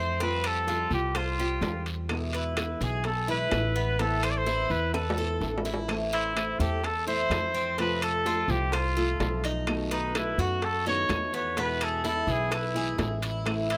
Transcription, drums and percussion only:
0.20 high bongo medium
0.20 high timbale medium
0.20 long guiro medium
0.44 high timbale medium
0.44 claves medium
0.67 high bongo soft
0.67 low timbale medium
0.67 short guiro medium
0.91 high bongo soft
0.91 short guiro medium
1.15 high bongo medium
1.15 high timbale medium
1.15 long guiro medium
1.15 claves medium
1.38 high bongo soft
1.62 high bongo medium
1.62 low bongo medium
1.62 high timbale medium
1.62 low timbale medium
1.62 short guiro medium
1.86 high bongo soft
1.86 high timbale medium
1.86 short guiro medium
2.09 high bongo medium
2.09 high timbale medium
2.09 long guiro medium
2.09 claves medium
2.33 high timbale medium
2.57 high bongo medium
2.57 high timbale medium
2.57 low timbale medium
2.57 short guiro medium
2.57 claves medium
2.81 short guiro medium
3.04 high bongo medium
3.04 high timbale medium
3.04 long guiro medium
3.51 high bongo medium
3.51 low bongo medium
3.51 high timbale medium
3.51 low timbale medium
3.51 short guiro medium
3.51 claves medium
3.76 short guiro medium
3.99 high bongo medium
3.99 high timbale medium
3.99 long guiro medium
4.23 high timbale medium
4.23 claves medium
4.46 high bongo medium
4.46 low timbale medium
4.46 short guiro medium
4.70 high bongo soft
4.70 short guiro medium
4.94 high bongo medium
4.94 high timbale medium
4.94 long guiro medium
4.94 claves medium
5.10 low timbale loud
5.17 high bongo soft
5.41 high bongo medium
5.41 low bongo medium
5.41 short guiro medium
5.58 low timbale medium
5.65 high bongo medium
5.65 short guiro medium
5.74 low timbale medium
5.89 high bongo medium
5.89 high timbale medium
5.89 long guiro medium
5.89 claves medium
6.13 high timbale medium
6.36 high bongo medium
6.36 high timbale medium
6.36 low timbale medium
6.36 short guiro medium
6.36 claves medium
6.60 short guiro medium
6.84 high bongo medium
6.84 high timbale medium
6.84 long guiro medium
7.31 high bongo medium
7.31 low bongo medium
7.31 high timbale medium
7.31 low timbale medium
7.31 short guiro medium
7.31 claves medium
7.55 short guiro medium
7.78 high bongo medium
7.78 high timbale medium
7.78 long guiro medium
8.02 high timbale medium
8.02 claves medium
8.26 high bongo medium
8.26 low timbale medium
8.26 short guiro medium
8.49 high bongo soft
8.49 short guiro medium
8.72 high bongo medium
8.72 high timbale medium
8.72 long guiro medium
8.72 claves medium
8.96 high bongo soft
9.20 high bongo medium
9.20 low bongo medium
9.20 high timbale medium
9.20 low timbale medium
9.20 short guiro medium
9.44 high bongo soft
9.44 high timbale medium
9.44 short guiro medium
9.67 high bongo medium
9.67 high timbale medium
9.67 long guiro medium
9.67 claves medium
9.91 high timbale medium
10.15 high bongo medium
10.15 high timbale medium
10.15 low timbale medium
10.15 short guiro medium
10.15 claves medium
10.39 short guiro medium
10.62 high bongo medium
10.62 high timbale medium
10.62 long guiro medium
11.09 high bongo medium
11.09 low bongo medium
11.09 high timbale medium
11.09 low timbale medium
11.09 short guiro medium
11.09 claves medium
11.33 short guiro medium
11.57 high bongo medium
11.57 high timbale medium
11.57 long guiro medium
11.81 high timbale medium
11.81 claves medium
12.04 high bongo medium
12.04 low timbale medium
12.04 short guiro medium
12.28 high bongo soft
12.28 short guiro medium
12.51 high bongo medium
12.51 high timbale medium
12.51 long guiro medium
12.51 claves medium
12.75 high bongo soft
12.98 high bongo medium
12.98 low bongo medium
12.98 high timbale medium
12.98 low timbale medium
12.98 short guiro medium
13.22 high bongo soft
13.22 high timbale medium
13.22 short guiro medium
13.45 high bongo medium
13.45 high timbale medium
13.45 long guiro medium
13.45 claves medium
13.70 high timbale medium

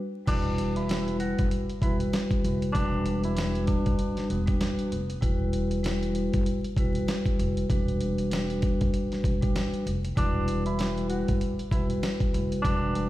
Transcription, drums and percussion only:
0.27 kick loud
0.27 closed hi-hat loud
0.27 crash loud
0.58 closed hi-hat medium
0.76 closed hi-hat medium
0.89 snare loud
0.89 closed hi-hat medium
1.08 closed hi-hat soft
1.20 closed hi-hat medium
1.39 kick medium
1.39 closed hi-hat medium
1.51 closed hi-hat medium
1.70 closed hi-hat soft
1.82 kick medium
1.82 closed hi-hat medium
2.00 closed hi-hat medium
2.13 snare loud
2.13 closed hi-hat medium
2.31 kick loud
2.31 closed hi-hat soft
2.45 closed hi-hat medium
2.62 closed hi-hat medium
2.75 kick loud
2.75 closed hi-hat loud
3.06 closed hi-hat medium
3.24 closed hi-hat medium
3.37 snare loud
3.37 closed hi-hat loud
3.55 closed hi-hat soft
3.67 kick loud
3.67 closed hi-hat medium
3.86 kick medium
3.86 closed hi-hat medium
3.99 closed hi-hat medium
4.17 snare soft
4.17 closed hi-hat soft
4.30 closed hi-hat medium
4.47 kick medium
4.47 closed hi-hat medium
4.61 snare loud
4.61 closed hi-hat medium
4.79 closed hi-hat soft
4.92 closed hi-hat medium
5.10 closed hi-hat medium
5.22 kick loud
5.22 closed hi-hat loud
5.53 closed hi-hat medium
5.71 closed hi-hat medium
5.84 snare loud
5.84 closed hi-hat medium
6.03 closed hi-hat soft
6.15 closed hi-hat medium
6.33 kick loud
6.33 closed hi-hat medium
6.46 closed hi-hat medium
6.64 closed hi-hat soft
6.77 kick medium
6.77 closed hi-hat medium
6.95 closed hi-hat medium
7.08 snare loud
7.08 closed hi-hat medium
7.26 kick loud
7.26 closed hi-hat soft
7.39 closed hi-hat medium
7.57 closed hi-hat medium
7.70 kick loud
7.70 closed hi-hat loud
7.88 closed hi-hat soft
8.01 closed hi-hat medium
8.18 closed hi-hat medium
8.31 snare loud
8.31 closed hi-hat loud
8.50 closed hi-hat soft
8.62 kick loud
8.62 closed hi-hat medium
8.81 kick loud
8.81 closed hi-hat medium
8.94 closed hi-hat medium
9.12 snare soft
9.12 closed hi-hat soft
9.24 kick medium
9.24 closed hi-hat medium
9.42 kick medium
9.42 closed hi-hat medium
9.56 snare loud
9.56 closed hi-hat medium
9.74 closed hi-hat soft
9.87 closed hi-hat medium
10.05 closed hi-hat medium
10.17 kick loud
10.17 closed hi-hat loud
10.48 closed hi-hat medium
10.66 closed hi-hat medium
10.79 snare loud
10.79 closed hi-hat medium
10.98 closed hi-hat soft
11.10 closed hi-hat medium
11.28 kick loud
11.28 closed hi-hat medium
11.41 closed hi-hat medium
11.59 closed hi-hat soft
11.71 kick medium
11.71 closed hi-hat medium
11.90 closed hi-hat medium
12.03 snare loud
12.03 closed hi-hat medium
12.20 kick loud
12.20 closed hi-hat soft
12.34 closed hi-hat medium
12.52 closed hi-hat medium
12.65 kick loud
12.65 closed hi-hat loud
12.95 closed hi-hat medium

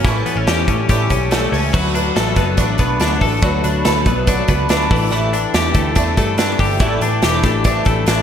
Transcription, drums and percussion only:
0.05 kick loud
0.05 closed hi-hat medium
0.26 closed hi-hat medium
0.47 snare loud
0.47 closed hi-hat medium
0.68 kick medium
0.68 closed hi-hat medium
0.89 kick medium
0.89 closed hi-hat medium
1.10 kick medium
1.10 closed hi-hat medium
1.31 snare loud
1.31 closed hi-hat medium
1.54 open hi-hat medium
1.74 kick loud
1.74 crash medium
1.95 closed hi-hat medium
2.16 snare loud
2.16 closed hi-hat medium
2.36 kick medium
2.36 snare soft
2.36 closed hi-hat medium
2.57 kick medium
2.57 closed hi-hat medium
2.78 kick medium
2.78 closed hi-hat medium
3.00 snare medium
3.00 closed hi-hat medium
3.21 kick medium
3.21 open hi-hat medium
3.42 kick loud
3.42 closed hi-hat medium
3.64 closed hi-hat medium
3.85 snare loud
3.85 closed hi-hat medium
4.06 kick medium
4.06 closed hi-hat medium
4.27 kick medium
4.27 closed hi-hat medium
4.48 kick medium
4.48 closed hi-hat medium
4.69 snare loud
4.69 closed hi-hat medium
4.91 kick loud
4.91 open hi-hat medium
5.12 closed hi-hat medium
5.33 closed hi-hat medium
5.54 snare loud
5.54 closed hi-hat medium
5.74 kick medium
5.74 closed hi-hat medium
5.95 kick medium
5.95 closed hi-hat medium
6.17 kick medium
6.17 closed hi-hat medium
6.38 snare loud
6.38 closed hi-hat medium
6.59 kick medium
6.59 open hi-hat medium
6.80 kick loud
6.80 closed hi-hat medium
7.01 closed hi-hat medium
7.22 snare loud
7.22 closed hi-hat medium
7.43 kick medium
7.43 snare soft
7.43 closed hi-hat medium
7.64 kick medium
7.64 closed hi-hat medium
7.85 kick medium
7.85 closed hi-hat medium
8.06 snare loud
8.06 closed hi-hat medium

